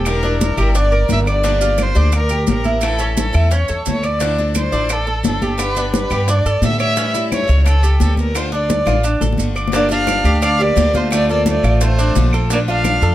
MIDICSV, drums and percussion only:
0, 0, Header, 1, 2, 480
1, 0, Start_track
1, 0, Key_signature, -1, "minor"
1, 0, Tempo, 345423
1, 89, Time_signature, 4, 2, 24, 8
1, 18272, End_track
2, 0, Start_track
2, 0, Title_t, "Drums"
2, 72, Note_on_c, 9, 75, 64
2, 79, Note_on_c, 9, 70, 63
2, 90, Note_on_c, 9, 60, 55
2, 103, Note_on_c, 9, 63, 33
2, 211, Note_off_c, 9, 75, 0
2, 218, Note_off_c, 9, 70, 0
2, 229, Note_off_c, 9, 60, 0
2, 242, Note_off_c, 9, 63, 0
2, 328, Note_on_c, 9, 60, 32
2, 337, Note_on_c, 9, 63, 35
2, 467, Note_off_c, 9, 60, 0
2, 476, Note_off_c, 9, 63, 0
2, 569, Note_on_c, 9, 70, 63
2, 574, Note_on_c, 9, 63, 83
2, 579, Note_on_c, 9, 60, 55
2, 708, Note_off_c, 9, 70, 0
2, 713, Note_off_c, 9, 63, 0
2, 718, Note_off_c, 9, 60, 0
2, 798, Note_on_c, 9, 70, 28
2, 807, Note_on_c, 9, 75, 59
2, 817, Note_on_c, 9, 63, 33
2, 937, Note_off_c, 9, 70, 0
2, 946, Note_off_c, 9, 75, 0
2, 956, Note_off_c, 9, 63, 0
2, 1038, Note_on_c, 9, 70, 62
2, 1048, Note_on_c, 9, 60, 60
2, 1056, Note_on_c, 9, 63, 32
2, 1177, Note_off_c, 9, 70, 0
2, 1187, Note_off_c, 9, 60, 0
2, 1195, Note_off_c, 9, 63, 0
2, 1281, Note_on_c, 9, 60, 28
2, 1295, Note_on_c, 9, 63, 35
2, 1420, Note_off_c, 9, 60, 0
2, 1434, Note_off_c, 9, 63, 0
2, 1513, Note_on_c, 9, 60, 33
2, 1513, Note_on_c, 9, 61, 80
2, 1521, Note_on_c, 9, 70, 56
2, 1526, Note_on_c, 9, 63, 64
2, 1652, Note_off_c, 9, 60, 0
2, 1652, Note_off_c, 9, 61, 0
2, 1660, Note_off_c, 9, 70, 0
2, 1665, Note_off_c, 9, 63, 0
2, 1755, Note_on_c, 9, 60, 34
2, 1769, Note_on_c, 9, 70, 24
2, 1769, Note_on_c, 9, 75, 62
2, 1773, Note_on_c, 9, 63, 31
2, 1894, Note_off_c, 9, 60, 0
2, 1908, Note_off_c, 9, 70, 0
2, 1908, Note_off_c, 9, 75, 0
2, 1912, Note_off_c, 9, 63, 0
2, 2002, Note_on_c, 9, 60, 58
2, 2008, Note_on_c, 9, 70, 62
2, 2016, Note_on_c, 9, 63, 35
2, 2141, Note_off_c, 9, 60, 0
2, 2147, Note_off_c, 9, 70, 0
2, 2155, Note_off_c, 9, 63, 0
2, 2238, Note_on_c, 9, 60, 28
2, 2239, Note_on_c, 9, 70, 63
2, 2255, Note_on_c, 9, 63, 35
2, 2377, Note_off_c, 9, 60, 0
2, 2378, Note_off_c, 9, 70, 0
2, 2394, Note_off_c, 9, 63, 0
2, 2470, Note_on_c, 9, 60, 54
2, 2473, Note_on_c, 9, 70, 69
2, 2483, Note_on_c, 9, 75, 58
2, 2497, Note_on_c, 9, 63, 50
2, 2609, Note_off_c, 9, 60, 0
2, 2612, Note_off_c, 9, 70, 0
2, 2622, Note_off_c, 9, 75, 0
2, 2636, Note_off_c, 9, 63, 0
2, 2714, Note_on_c, 9, 70, 29
2, 2853, Note_off_c, 9, 70, 0
2, 2946, Note_on_c, 9, 70, 65
2, 2957, Note_on_c, 9, 60, 64
2, 2961, Note_on_c, 9, 75, 60
2, 2984, Note_on_c, 9, 63, 30
2, 3085, Note_off_c, 9, 70, 0
2, 3096, Note_off_c, 9, 60, 0
2, 3100, Note_off_c, 9, 75, 0
2, 3123, Note_off_c, 9, 63, 0
2, 3183, Note_on_c, 9, 70, 54
2, 3199, Note_on_c, 9, 60, 29
2, 3222, Note_on_c, 9, 63, 34
2, 3322, Note_off_c, 9, 70, 0
2, 3338, Note_off_c, 9, 60, 0
2, 3361, Note_off_c, 9, 63, 0
2, 3429, Note_on_c, 9, 70, 58
2, 3441, Note_on_c, 9, 60, 35
2, 3441, Note_on_c, 9, 61, 81
2, 3445, Note_on_c, 9, 63, 62
2, 3568, Note_off_c, 9, 70, 0
2, 3579, Note_off_c, 9, 60, 0
2, 3579, Note_off_c, 9, 61, 0
2, 3584, Note_off_c, 9, 63, 0
2, 3668, Note_on_c, 9, 70, 26
2, 3688, Note_on_c, 9, 60, 31
2, 3689, Note_on_c, 9, 63, 73
2, 3807, Note_off_c, 9, 70, 0
2, 3827, Note_off_c, 9, 60, 0
2, 3828, Note_off_c, 9, 63, 0
2, 3905, Note_on_c, 9, 70, 61
2, 3928, Note_on_c, 9, 75, 64
2, 3932, Note_on_c, 9, 63, 32
2, 3936, Note_on_c, 9, 60, 63
2, 4044, Note_off_c, 9, 70, 0
2, 4067, Note_off_c, 9, 75, 0
2, 4071, Note_off_c, 9, 63, 0
2, 4075, Note_off_c, 9, 60, 0
2, 4153, Note_on_c, 9, 70, 56
2, 4173, Note_on_c, 9, 60, 32
2, 4180, Note_on_c, 9, 63, 35
2, 4292, Note_off_c, 9, 70, 0
2, 4312, Note_off_c, 9, 60, 0
2, 4319, Note_off_c, 9, 63, 0
2, 4404, Note_on_c, 9, 70, 70
2, 4412, Note_on_c, 9, 63, 77
2, 4419, Note_on_c, 9, 60, 55
2, 4543, Note_off_c, 9, 70, 0
2, 4551, Note_off_c, 9, 63, 0
2, 4557, Note_off_c, 9, 60, 0
2, 4639, Note_on_c, 9, 70, 28
2, 4650, Note_on_c, 9, 75, 61
2, 4657, Note_on_c, 9, 63, 33
2, 4778, Note_off_c, 9, 70, 0
2, 4789, Note_off_c, 9, 75, 0
2, 4796, Note_off_c, 9, 63, 0
2, 4882, Note_on_c, 9, 70, 63
2, 4884, Note_on_c, 9, 60, 56
2, 4897, Note_on_c, 9, 63, 33
2, 5021, Note_off_c, 9, 70, 0
2, 5023, Note_off_c, 9, 60, 0
2, 5035, Note_off_c, 9, 63, 0
2, 5117, Note_on_c, 9, 70, 52
2, 5127, Note_on_c, 9, 60, 32
2, 5148, Note_on_c, 9, 63, 32
2, 5256, Note_off_c, 9, 70, 0
2, 5265, Note_off_c, 9, 60, 0
2, 5287, Note_off_c, 9, 63, 0
2, 5359, Note_on_c, 9, 70, 65
2, 5377, Note_on_c, 9, 60, 34
2, 5377, Note_on_c, 9, 61, 78
2, 5380, Note_on_c, 9, 63, 69
2, 5498, Note_off_c, 9, 70, 0
2, 5516, Note_off_c, 9, 60, 0
2, 5516, Note_off_c, 9, 61, 0
2, 5519, Note_off_c, 9, 63, 0
2, 5603, Note_on_c, 9, 70, 25
2, 5607, Note_on_c, 9, 75, 58
2, 5618, Note_on_c, 9, 60, 32
2, 5623, Note_on_c, 9, 63, 34
2, 5742, Note_off_c, 9, 70, 0
2, 5746, Note_off_c, 9, 75, 0
2, 5757, Note_off_c, 9, 60, 0
2, 5762, Note_off_c, 9, 63, 0
2, 5835, Note_on_c, 9, 70, 64
2, 5851, Note_on_c, 9, 60, 63
2, 5855, Note_on_c, 9, 63, 33
2, 5974, Note_off_c, 9, 70, 0
2, 5990, Note_off_c, 9, 60, 0
2, 5994, Note_off_c, 9, 63, 0
2, 6097, Note_on_c, 9, 63, 31
2, 6099, Note_on_c, 9, 60, 31
2, 6236, Note_off_c, 9, 63, 0
2, 6238, Note_off_c, 9, 60, 0
2, 6317, Note_on_c, 9, 70, 67
2, 6325, Note_on_c, 9, 75, 54
2, 6334, Note_on_c, 9, 60, 55
2, 6336, Note_on_c, 9, 63, 46
2, 6456, Note_off_c, 9, 70, 0
2, 6464, Note_off_c, 9, 75, 0
2, 6473, Note_off_c, 9, 60, 0
2, 6475, Note_off_c, 9, 63, 0
2, 6567, Note_on_c, 9, 70, 27
2, 6706, Note_off_c, 9, 70, 0
2, 6800, Note_on_c, 9, 70, 64
2, 6806, Note_on_c, 9, 63, 32
2, 6807, Note_on_c, 9, 75, 67
2, 6812, Note_on_c, 9, 60, 61
2, 6939, Note_off_c, 9, 70, 0
2, 6945, Note_off_c, 9, 63, 0
2, 6946, Note_off_c, 9, 75, 0
2, 6951, Note_off_c, 9, 60, 0
2, 7051, Note_on_c, 9, 63, 29
2, 7057, Note_on_c, 9, 60, 32
2, 7190, Note_off_c, 9, 63, 0
2, 7196, Note_off_c, 9, 60, 0
2, 7284, Note_on_c, 9, 70, 63
2, 7289, Note_on_c, 9, 63, 62
2, 7291, Note_on_c, 9, 60, 31
2, 7291, Note_on_c, 9, 61, 80
2, 7423, Note_off_c, 9, 70, 0
2, 7428, Note_off_c, 9, 63, 0
2, 7429, Note_off_c, 9, 60, 0
2, 7429, Note_off_c, 9, 61, 0
2, 7530, Note_on_c, 9, 63, 77
2, 7531, Note_on_c, 9, 60, 30
2, 7533, Note_on_c, 9, 70, 27
2, 7669, Note_off_c, 9, 63, 0
2, 7670, Note_off_c, 9, 60, 0
2, 7672, Note_off_c, 9, 70, 0
2, 7768, Note_on_c, 9, 60, 60
2, 7769, Note_on_c, 9, 75, 61
2, 7770, Note_on_c, 9, 63, 32
2, 7773, Note_on_c, 9, 70, 68
2, 7907, Note_off_c, 9, 60, 0
2, 7908, Note_off_c, 9, 75, 0
2, 7909, Note_off_c, 9, 63, 0
2, 7912, Note_off_c, 9, 70, 0
2, 8011, Note_on_c, 9, 70, 59
2, 8012, Note_on_c, 9, 60, 29
2, 8017, Note_on_c, 9, 63, 33
2, 8150, Note_off_c, 9, 70, 0
2, 8151, Note_off_c, 9, 60, 0
2, 8156, Note_off_c, 9, 63, 0
2, 8248, Note_on_c, 9, 60, 59
2, 8251, Note_on_c, 9, 63, 80
2, 8262, Note_on_c, 9, 70, 65
2, 8387, Note_off_c, 9, 60, 0
2, 8390, Note_off_c, 9, 63, 0
2, 8401, Note_off_c, 9, 70, 0
2, 8486, Note_on_c, 9, 63, 34
2, 8487, Note_on_c, 9, 75, 58
2, 8491, Note_on_c, 9, 70, 28
2, 8625, Note_off_c, 9, 63, 0
2, 8626, Note_off_c, 9, 75, 0
2, 8630, Note_off_c, 9, 70, 0
2, 8725, Note_on_c, 9, 60, 60
2, 8728, Note_on_c, 9, 63, 32
2, 8731, Note_on_c, 9, 70, 65
2, 8864, Note_off_c, 9, 60, 0
2, 8867, Note_off_c, 9, 63, 0
2, 8870, Note_off_c, 9, 70, 0
2, 8963, Note_on_c, 9, 63, 33
2, 8975, Note_on_c, 9, 70, 47
2, 8976, Note_on_c, 9, 60, 27
2, 9102, Note_off_c, 9, 63, 0
2, 9114, Note_off_c, 9, 70, 0
2, 9115, Note_off_c, 9, 60, 0
2, 9198, Note_on_c, 9, 63, 75
2, 9207, Note_on_c, 9, 70, 62
2, 9219, Note_on_c, 9, 60, 34
2, 9219, Note_on_c, 9, 61, 86
2, 9337, Note_off_c, 9, 63, 0
2, 9346, Note_off_c, 9, 70, 0
2, 9358, Note_off_c, 9, 60, 0
2, 9358, Note_off_c, 9, 61, 0
2, 9441, Note_on_c, 9, 70, 27
2, 9446, Note_on_c, 9, 63, 33
2, 9449, Note_on_c, 9, 75, 60
2, 9450, Note_on_c, 9, 60, 30
2, 9580, Note_off_c, 9, 70, 0
2, 9585, Note_off_c, 9, 63, 0
2, 9588, Note_off_c, 9, 75, 0
2, 9589, Note_off_c, 9, 60, 0
2, 9682, Note_on_c, 9, 70, 62
2, 9688, Note_on_c, 9, 60, 59
2, 9691, Note_on_c, 9, 63, 33
2, 9821, Note_off_c, 9, 70, 0
2, 9827, Note_off_c, 9, 60, 0
2, 9830, Note_off_c, 9, 63, 0
2, 9929, Note_on_c, 9, 70, 61
2, 9933, Note_on_c, 9, 63, 33
2, 9939, Note_on_c, 9, 60, 32
2, 10068, Note_off_c, 9, 70, 0
2, 10072, Note_off_c, 9, 63, 0
2, 10078, Note_off_c, 9, 60, 0
2, 10169, Note_on_c, 9, 75, 56
2, 10171, Note_on_c, 9, 63, 53
2, 10173, Note_on_c, 9, 70, 60
2, 10175, Note_on_c, 9, 60, 57
2, 10308, Note_off_c, 9, 75, 0
2, 10310, Note_off_c, 9, 63, 0
2, 10312, Note_off_c, 9, 70, 0
2, 10314, Note_off_c, 9, 60, 0
2, 10417, Note_on_c, 9, 70, 27
2, 10556, Note_off_c, 9, 70, 0
2, 10644, Note_on_c, 9, 63, 31
2, 10648, Note_on_c, 9, 60, 61
2, 10651, Note_on_c, 9, 75, 60
2, 10661, Note_on_c, 9, 70, 67
2, 10783, Note_off_c, 9, 63, 0
2, 10787, Note_off_c, 9, 60, 0
2, 10790, Note_off_c, 9, 75, 0
2, 10800, Note_off_c, 9, 70, 0
2, 10879, Note_on_c, 9, 63, 33
2, 10881, Note_on_c, 9, 60, 29
2, 10891, Note_on_c, 9, 70, 50
2, 11018, Note_off_c, 9, 63, 0
2, 11020, Note_off_c, 9, 60, 0
2, 11030, Note_off_c, 9, 70, 0
2, 11118, Note_on_c, 9, 60, 36
2, 11118, Note_on_c, 9, 61, 78
2, 11118, Note_on_c, 9, 63, 74
2, 11129, Note_on_c, 9, 70, 64
2, 11257, Note_off_c, 9, 60, 0
2, 11257, Note_off_c, 9, 61, 0
2, 11257, Note_off_c, 9, 63, 0
2, 11268, Note_off_c, 9, 70, 0
2, 11358, Note_on_c, 9, 63, 74
2, 11364, Note_on_c, 9, 60, 30
2, 11374, Note_on_c, 9, 70, 27
2, 11497, Note_off_c, 9, 63, 0
2, 11503, Note_off_c, 9, 60, 0
2, 11513, Note_off_c, 9, 70, 0
2, 11603, Note_on_c, 9, 63, 31
2, 11605, Note_on_c, 9, 75, 61
2, 11609, Note_on_c, 9, 60, 58
2, 11611, Note_on_c, 9, 70, 67
2, 11742, Note_off_c, 9, 63, 0
2, 11744, Note_off_c, 9, 75, 0
2, 11748, Note_off_c, 9, 60, 0
2, 11750, Note_off_c, 9, 70, 0
2, 11842, Note_on_c, 9, 60, 32
2, 11850, Note_on_c, 9, 63, 36
2, 11981, Note_off_c, 9, 60, 0
2, 11989, Note_off_c, 9, 63, 0
2, 12085, Note_on_c, 9, 70, 63
2, 12087, Note_on_c, 9, 60, 57
2, 12090, Note_on_c, 9, 63, 88
2, 12224, Note_off_c, 9, 70, 0
2, 12226, Note_off_c, 9, 60, 0
2, 12229, Note_off_c, 9, 63, 0
2, 12320, Note_on_c, 9, 75, 54
2, 12326, Note_on_c, 9, 60, 80
2, 12328, Note_on_c, 9, 63, 34
2, 12334, Note_on_c, 9, 70, 26
2, 12459, Note_off_c, 9, 75, 0
2, 12465, Note_off_c, 9, 60, 0
2, 12467, Note_off_c, 9, 63, 0
2, 12472, Note_off_c, 9, 70, 0
2, 12568, Note_on_c, 9, 63, 33
2, 12571, Note_on_c, 9, 70, 64
2, 12707, Note_off_c, 9, 63, 0
2, 12710, Note_off_c, 9, 70, 0
2, 12804, Note_on_c, 9, 61, 80
2, 12806, Note_on_c, 9, 63, 34
2, 12809, Note_on_c, 9, 70, 55
2, 12943, Note_off_c, 9, 61, 0
2, 12945, Note_off_c, 9, 63, 0
2, 12948, Note_off_c, 9, 70, 0
2, 12959, Note_on_c, 9, 61, 57
2, 13033, Note_on_c, 9, 63, 67
2, 13054, Note_on_c, 9, 70, 66
2, 13098, Note_off_c, 9, 61, 0
2, 13172, Note_off_c, 9, 63, 0
2, 13193, Note_off_c, 9, 70, 0
2, 13270, Note_on_c, 9, 63, 33
2, 13288, Note_on_c, 9, 75, 57
2, 13294, Note_on_c, 9, 70, 25
2, 13409, Note_off_c, 9, 63, 0
2, 13427, Note_off_c, 9, 75, 0
2, 13433, Note_off_c, 9, 70, 0
2, 13445, Note_on_c, 9, 61, 67
2, 13515, Note_on_c, 9, 63, 32
2, 13525, Note_on_c, 9, 60, 65
2, 13541, Note_on_c, 9, 70, 68
2, 13584, Note_off_c, 9, 61, 0
2, 13654, Note_off_c, 9, 63, 0
2, 13664, Note_off_c, 9, 60, 0
2, 13680, Note_off_c, 9, 70, 0
2, 13764, Note_on_c, 9, 60, 34
2, 13766, Note_on_c, 9, 63, 33
2, 13776, Note_on_c, 9, 70, 55
2, 13903, Note_off_c, 9, 60, 0
2, 13905, Note_off_c, 9, 63, 0
2, 13915, Note_off_c, 9, 70, 0
2, 13994, Note_on_c, 9, 60, 60
2, 14004, Note_on_c, 9, 63, 48
2, 14005, Note_on_c, 9, 75, 58
2, 14010, Note_on_c, 9, 70, 68
2, 14133, Note_off_c, 9, 60, 0
2, 14143, Note_off_c, 9, 63, 0
2, 14143, Note_off_c, 9, 75, 0
2, 14149, Note_off_c, 9, 70, 0
2, 14245, Note_on_c, 9, 70, 27
2, 14384, Note_off_c, 9, 70, 0
2, 14485, Note_on_c, 9, 60, 59
2, 14488, Note_on_c, 9, 70, 66
2, 14489, Note_on_c, 9, 75, 63
2, 14494, Note_on_c, 9, 63, 29
2, 14624, Note_off_c, 9, 60, 0
2, 14627, Note_off_c, 9, 70, 0
2, 14628, Note_off_c, 9, 75, 0
2, 14633, Note_off_c, 9, 63, 0
2, 14731, Note_on_c, 9, 60, 28
2, 14733, Note_on_c, 9, 63, 32
2, 14870, Note_off_c, 9, 60, 0
2, 14872, Note_off_c, 9, 63, 0
2, 14964, Note_on_c, 9, 60, 36
2, 14964, Note_on_c, 9, 61, 82
2, 14969, Note_on_c, 9, 70, 59
2, 14971, Note_on_c, 9, 63, 66
2, 15103, Note_off_c, 9, 60, 0
2, 15103, Note_off_c, 9, 61, 0
2, 15108, Note_off_c, 9, 70, 0
2, 15110, Note_off_c, 9, 63, 0
2, 15206, Note_on_c, 9, 70, 27
2, 15211, Note_on_c, 9, 63, 78
2, 15222, Note_on_c, 9, 60, 35
2, 15345, Note_off_c, 9, 70, 0
2, 15350, Note_off_c, 9, 63, 0
2, 15361, Note_off_c, 9, 60, 0
2, 15450, Note_on_c, 9, 63, 34
2, 15454, Note_on_c, 9, 60, 63
2, 15454, Note_on_c, 9, 75, 62
2, 15460, Note_on_c, 9, 70, 66
2, 15589, Note_off_c, 9, 63, 0
2, 15593, Note_off_c, 9, 60, 0
2, 15593, Note_off_c, 9, 75, 0
2, 15599, Note_off_c, 9, 70, 0
2, 15700, Note_on_c, 9, 60, 31
2, 15701, Note_on_c, 9, 63, 33
2, 15839, Note_off_c, 9, 60, 0
2, 15840, Note_off_c, 9, 63, 0
2, 15922, Note_on_c, 9, 63, 74
2, 15926, Note_on_c, 9, 70, 69
2, 15941, Note_on_c, 9, 60, 55
2, 16061, Note_off_c, 9, 63, 0
2, 16065, Note_off_c, 9, 70, 0
2, 16080, Note_off_c, 9, 60, 0
2, 16175, Note_on_c, 9, 70, 28
2, 16177, Note_on_c, 9, 75, 59
2, 16179, Note_on_c, 9, 63, 38
2, 16314, Note_off_c, 9, 70, 0
2, 16316, Note_off_c, 9, 75, 0
2, 16318, Note_off_c, 9, 63, 0
2, 16407, Note_on_c, 9, 70, 73
2, 16416, Note_on_c, 9, 63, 36
2, 16418, Note_on_c, 9, 60, 64
2, 16546, Note_off_c, 9, 70, 0
2, 16555, Note_off_c, 9, 63, 0
2, 16557, Note_off_c, 9, 60, 0
2, 16654, Note_on_c, 9, 63, 32
2, 16659, Note_on_c, 9, 70, 54
2, 16667, Note_on_c, 9, 60, 31
2, 16793, Note_off_c, 9, 63, 0
2, 16798, Note_off_c, 9, 70, 0
2, 16806, Note_off_c, 9, 60, 0
2, 16890, Note_on_c, 9, 70, 67
2, 16896, Note_on_c, 9, 63, 75
2, 16899, Note_on_c, 9, 60, 36
2, 16899, Note_on_c, 9, 61, 82
2, 17029, Note_off_c, 9, 70, 0
2, 17035, Note_off_c, 9, 63, 0
2, 17038, Note_off_c, 9, 60, 0
2, 17038, Note_off_c, 9, 61, 0
2, 17132, Note_on_c, 9, 75, 67
2, 17135, Note_on_c, 9, 63, 34
2, 17137, Note_on_c, 9, 60, 33
2, 17145, Note_on_c, 9, 70, 26
2, 17271, Note_off_c, 9, 75, 0
2, 17274, Note_off_c, 9, 63, 0
2, 17276, Note_off_c, 9, 60, 0
2, 17284, Note_off_c, 9, 70, 0
2, 17373, Note_on_c, 9, 70, 67
2, 17375, Note_on_c, 9, 60, 62
2, 17378, Note_on_c, 9, 63, 34
2, 17512, Note_off_c, 9, 70, 0
2, 17514, Note_off_c, 9, 60, 0
2, 17517, Note_off_c, 9, 63, 0
2, 17615, Note_on_c, 9, 60, 34
2, 17615, Note_on_c, 9, 63, 37
2, 17754, Note_off_c, 9, 60, 0
2, 17754, Note_off_c, 9, 63, 0
2, 17846, Note_on_c, 9, 75, 57
2, 17849, Note_on_c, 9, 63, 58
2, 17853, Note_on_c, 9, 60, 61
2, 17853, Note_on_c, 9, 70, 72
2, 17985, Note_off_c, 9, 75, 0
2, 17988, Note_off_c, 9, 63, 0
2, 17992, Note_off_c, 9, 60, 0
2, 17992, Note_off_c, 9, 70, 0
2, 18092, Note_on_c, 9, 70, 31
2, 18231, Note_off_c, 9, 70, 0
2, 18272, End_track
0, 0, End_of_file